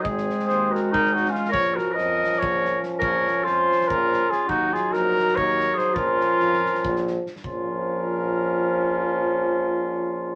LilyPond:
<<
  \new Staff \with { instrumentName = "Cornet" } { \time 7/8 \key bes \minor \tempo 4 = 142 r4 c''8 bes'8 bes'8 ges'8 f'8 | des''8 bes'8 ees''4 des''4 r8 | des''4 c''4 bes'4 aes'8 | ges'8 aes'8 bes'4 des''4 c''8 |
bes'2. r8 | bes'2.~ bes'8~ | bes'2.~ bes'8 | }
  \new Staff \with { instrumentName = "Clarinet" } { \time 7/8 \key bes \minor aes'4 aes'8 ges'8 ees'8 ees'8 des'8 | bes'8 ges'8 bes'4 bes'4 r8 | bes'4 f'4 f'4 f'8 | ees'8 f'8 ges'4 bes'4 aes'8 |
f'2. r8 | f'2.~ f'8~ | f'2.~ f'8 | }
  \new Staff \with { instrumentName = "Trombone" } { \time 7/8 \key bes \minor c'2. r8 | des'2.~ des'8~ | des'2.~ des'8 | ees'2.~ ees'8 |
des'2. r8 | des'2.~ des'8~ | des'2.~ des'8 | }
  \new Staff \with { instrumentName = "Euphonium" } { \clef bass \time 7/8 \key bes \minor aes2. r8 | f2.~ f8~ | f2.~ f8 | ges2.~ ges8 |
f2. r8 | f2.~ f8~ | f2.~ f8 | }
  \new Staff \with { instrumentName = "Tuba" } { \clef bass \time 7/8 \key bes \minor aes,,4 ees,4 aes,,4. | bes,,4 f,4 bes,,4. | bes,,4 f,4 bes,,4. | ees,4 bes,,4 ees,4. |
bes,,4 f,4 bes,,4. | bes,,2.~ bes,,8~ | bes,,2.~ bes,,8 | }
  \new DrumStaff \with { instrumentName = "Drums" } \drummode { \time 7/8 bd16 sn16 sn16 sn16 sn8 sn8 bd16 sn16 sn16 sn16 sn16 sn16 | bd8 sn8 sn8 sn16 sn16 bd8 sn8 sn8 | bd8 sn8 sn8 sn16 sn16 bd8 sn8 sn8 | bd8 sn8 sn8 sn16 sn16 bd8 sn8 sn8 |
bd8 sn8 sn16 sn16 sn16 sn16 bd16 sn16 sn8 sn16 sn16 | bd4 r4 r4. | r4 r4 r4. | }
>>